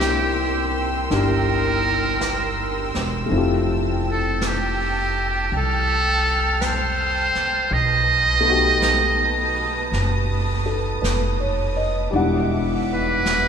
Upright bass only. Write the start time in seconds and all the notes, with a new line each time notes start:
Already playing: C2
1.10 G1
2.96 E1
3.31 F1
5.52 C2
7.36 muted upright bass stroke
7.71 B1
9.92 F#1
11.03 F1
12.13 E1